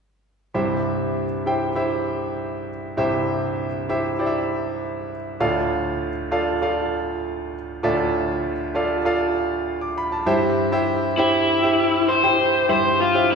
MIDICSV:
0, 0, Header, 1, 3, 480
1, 0, Start_track
1, 0, Key_signature, 0, "major"
1, 0, Tempo, 607287
1, 433, Time_signature, 4, 2, 24, 8
1, 10552, End_track
2, 0, Start_track
2, 0, Title_t, "Grand piano"
2, 0, Program_c, 0, 0
2, 430, Note_on_c, 0, 67, 53
2, 430, Note_on_c, 0, 72, 54
2, 431, Note_on_c, 0, 36, 47
2, 431, Note_on_c, 0, 64, 59
2, 432, Note_on_c, 0, 43, 50
2, 434, Note_on_c, 0, 76, 60
2, 577, Control_c, 0, 64, 127
2, 975, Note_off_c, 0, 72, 0
2, 976, Note_off_c, 0, 64, 0
2, 976, Note_off_c, 0, 67, 0
2, 978, Note_off_c, 0, 76, 0
2, 1156, Note_on_c, 0, 64, 54
2, 1158, Note_on_c, 0, 67, 49
2, 1160, Note_on_c, 0, 72, 52
2, 1164, Note_on_c, 0, 79, 59
2, 1336, Note_off_c, 0, 64, 0
2, 1337, Note_off_c, 0, 67, 0
2, 1338, Note_off_c, 0, 72, 0
2, 1340, Note_off_c, 0, 79, 0
2, 1387, Note_on_c, 0, 64, 59
2, 1393, Note_on_c, 0, 67, 48
2, 1393, Note_on_c, 0, 76, 63
2, 1394, Note_on_c, 0, 72, 50
2, 2116, Note_off_c, 0, 64, 0
2, 2119, Note_off_c, 0, 67, 0
2, 2119, Note_off_c, 0, 72, 0
2, 2119, Note_off_c, 0, 76, 0
2, 2321, Note_off_c, 0, 36, 0
2, 2322, Note_off_c, 0, 43, 0
2, 2349, Note_on_c, 0, 64, 63
2, 2352, Note_on_c, 0, 36, 53
2, 2352, Note_on_c, 0, 43, 49
2, 2353, Note_on_c, 0, 67, 56
2, 2353, Note_on_c, 0, 76, 67
2, 2357, Note_on_c, 0, 72, 56
2, 2895, Note_off_c, 0, 64, 0
2, 2898, Note_off_c, 0, 67, 0
2, 2898, Note_off_c, 0, 76, 0
2, 2899, Note_off_c, 0, 72, 0
2, 3076, Note_on_c, 0, 64, 54
2, 3076, Note_on_c, 0, 67, 54
2, 3078, Note_on_c, 0, 72, 52
2, 3080, Note_on_c, 0, 76, 61
2, 3256, Note_off_c, 0, 64, 0
2, 3256, Note_off_c, 0, 67, 0
2, 3257, Note_off_c, 0, 72, 0
2, 3258, Note_off_c, 0, 76, 0
2, 3311, Note_on_c, 0, 64, 58
2, 3314, Note_on_c, 0, 67, 50
2, 3316, Note_on_c, 0, 72, 51
2, 3319, Note_on_c, 0, 74, 50
2, 3368, Note_off_c, 0, 74, 0
2, 3370, Note_on_c, 0, 76, 61
2, 4038, Note_off_c, 0, 64, 0
2, 4040, Note_off_c, 0, 67, 0
2, 4040, Note_off_c, 0, 72, 0
2, 4067, Note_off_c, 0, 76, 0
2, 4242, Note_off_c, 0, 36, 0
2, 4242, Note_off_c, 0, 43, 0
2, 4271, Note_on_c, 0, 65, 61
2, 4272, Note_on_c, 0, 38, 54
2, 4272, Note_on_c, 0, 45, 50
2, 4272, Note_on_c, 0, 74, 56
2, 4273, Note_on_c, 0, 69, 54
2, 4273, Note_on_c, 0, 77, 72
2, 4283, Control_c, 0, 64, 0
2, 4398, Control_c, 0, 64, 127
2, 4817, Note_off_c, 0, 65, 0
2, 4817, Note_off_c, 0, 74, 0
2, 4818, Note_off_c, 0, 69, 0
2, 4818, Note_off_c, 0, 77, 0
2, 4991, Note_on_c, 0, 65, 58
2, 4992, Note_on_c, 0, 69, 52
2, 4995, Note_on_c, 0, 77, 66
2, 4996, Note_on_c, 0, 74, 49
2, 5174, Note_off_c, 0, 65, 0
2, 5175, Note_off_c, 0, 69, 0
2, 5176, Note_off_c, 0, 77, 0
2, 5177, Note_off_c, 0, 74, 0
2, 5231, Note_on_c, 0, 65, 56
2, 5233, Note_on_c, 0, 69, 54
2, 5235, Note_on_c, 0, 74, 54
2, 5236, Note_on_c, 0, 77, 65
2, 5958, Note_off_c, 0, 65, 0
2, 5959, Note_off_c, 0, 69, 0
2, 5960, Note_off_c, 0, 74, 0
2, 5961, Note_off_c, 0, 77, 0
2, 6162, Note_off_c, 0, 38, 0
2, 6162, Note_off_c, 0, 45, 0
2, 6190, Note_on_c, 0, 65, 65
2, 6192, Note_on_c, 0, 69, 59
2, 6194, Note_on_c, 0, 74, 62
2, 6195, Note_on_c, 0, 38, 54
2, 6196, Note_on_c, 0, 45, 52
2, 6197, Note_on_c, 0, 76, 69
2, 6737, Note_off_c, 0, 65, 0
2, 6738, Note_off_c, 0, 69, 0
2, 6738, Note_off_c, 0, 74, 0
2, 6740, Note_off_c, 0, 76, 0
2, 6913, Note_on_c, 0, 65, 57
2, 6917, Note_on_c, 0, 69, 53
2, 6917, Note_on_c, 0, 74, 56
2, 6921, Note_on_c, 0, 77, 62
2, 7095, Note_off_c, 0, 65, 0
2, 7097, Note_off_c, 0, 69, 0
2, 7097, Note_off_c, 0, 74, 0
2, 7099, Note_off_c, 0, 77, 0
2, 7155, Note_on_c, 0, 65, 61
2, 7156, Note_on_c, 0, 69, 57
2, 7159, Note_on_c, 0, 74, 56
2, 7161, Note_on_c, 0, 77, 67
2, 7757, Note_on_c, 0, 86, 49
2, 7870, Note_off_c, 0, 86, 0
2, 7880, Note_off_c, 0, 65, 0
2, 7881, Note_off_c, 0, 69, 0
2, 7882, Note_off_c, 0, 74, 0
2, 7883, Note_off_c, 0, 77, 0
2, 7885, Note_on_c, 0, 83, 59
2, 7994, Note_off_c, 0, 83, 0
2, 7999, Note_on_c, 0, 81, 50
2, 8084, Note_off_c, 0, 38, 0
2, 8084, Note_off_c, 0, 45, 0
2, 8112, Note_on_c, 0, 64, 75
2, 8113, Note_on_c, 0, 43, 59
2, 8114, Note_on_c, 0, 67, 66
2, 8115, Note_on_c, 0, 72, 65
2, 8116, Note_on_c, 0, 76, 75
2, 8126, Control_c, 0, 64, 0
2, 8225, Note_off_c, 0, 81, 0
2, 8257, Control_c, 0, 64, 127
2, 8386, Note_off_c, 0, 64, 0
2, 8386, Note_off_c, 0, 67, 0
2, 8387, Note_off_c, 0, 72, 0
2, 8387, Note_off_c, 0, 76, 0
2, 8473, Note_on_c, 0, 64, 69
2, 8476, Note_on_c, 0, 67, 62
2, 8477, Note_on_c, 0, 72, 59
2, 8478, Note_on_c, 0, 76, 77
2, 8746, Note_off_c, 0, 64, 0
2, 8747, Note_off_c, 0, 67, 0
2, 8748, Note_off_c, 0, 72, 0
2, 8748, Note_off_c, 0, 76, 0
2, 8802, Note_off_c, 0, 43, 0
2, 8837, Note_on_c, 0, 64, 57
2, 8839, Note_on_c, 0, 67, 54
2, 8839, Note_on_c, 0, 72, 54
2, 8846, Note_on_c, 0, 79, 65
2, 9108, Note_off_c, 0, 64, 0
2, 9109, Note_off_c, 0, 67, 0
2, 9109, Note_off_c, 0, 72, 0
2, 9112, Note_off_c, 0, 79, 0
2, 9187, Note_on_c, 0, 64, 55
2, 9191, Note_on_c, 0, 67, 53
2, 9193, Note_on_c, 0, 72, 51
2, 9196, Note_on_c, 0, 76, 60
2, 9553, Note_off_c, 0, 64, 0
2, 9555, Note_off_c, 0, 67, 0
2, 9556, Note_off_c, 0, 72, 0
2, 9558, Note_off_c, 0, 76, 0
2, 9667, Note_on_c, 0, 67, 53
2, 9668, Note_on_c, 0, 64, 60
2, 9669, Note_on_c, 0, 72, 59
2, 9673, Note_on_c, 0, 79, 68
2, 9942, Note_off_c, 0, 67, 0
2, 9943, Note_off_c, 0, 64, 0
2, 9944, Note_off_c, 0, 72, 0
2, 9946, Note_off_c, 0, 79, 0
2, 10029, Note_on_c, 0, 64, 61
2, 10029, Note_on_c, 0, 67, 54
2, 10031, Note_on_c, 0, 43, 50
2, 10031, Note_on_c, 0, 72, 57
2, 10032, Note_on_c, 0, 76, 63
2, 10303, Note_off_c, 0, 64, 0
2, 10303, Note_off_c, 0, 67, 0
2, 10304, Note_off_c, 0, 72, 0
2, 10305, Note_off_c, 0, 76, 0
2, 10389, Note_on_c, 0, 64, 55
2, 10390, Note_on_c, 0, 67, 57
2, 10393, Note_on_c, 0, 72, 52
2, 10395, Note_on_c, 0, 76, 64
2, 10552, Note_off_c, 0, 43, 0
2, 10552, Note_off_c, 0, 64, 0
2, 10552, Note_off_c, 0, 67, 0
2, 10552, Note_off_c, 0, 72, 0
2, 10552, Note_off_c, 0, 76, 0
2, 10552, End_track
3, 0, Start_track
3, 0, Title_t, "Lead electric guitar"
3, 0, Program_c, 1, 29
3, 8833, Note_on_c, 1, 64, 70
3, 9551, Note_on_c, 1, 72, 85
3, 9575, Note_off_c, 1, 64, 0
3, 10028, Note_off_c, 1, 72, 0
3, 10038, Note_on_c, 1, 72, 88
3, 10259, Note_off_c, 1, 72, 0
3, 10277, Note_on_c, 1, 65, 70
3, 10523, Note_off_c, 1, 65, 0
3, 10552, End_track
0, 0, End_of_file